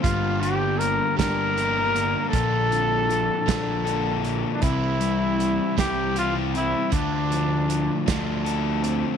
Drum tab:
HH |xxxxxx|xxxxxx|xxxxxx|xxxxxx|
SD |---o--|---o--|---o--|---o--|
BD |o--o--|o--o--|o--o--|o--o--|